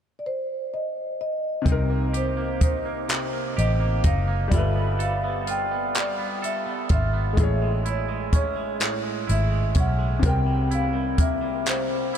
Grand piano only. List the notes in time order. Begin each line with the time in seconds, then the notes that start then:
1.62 C3 C4
1.69 D#4 A#4
4.48 G3 F4
4.55 A4 B4
7.33 G#3 E4
7.40 G#4 C#5
10.19 C3 C4
10.26 A#4 G5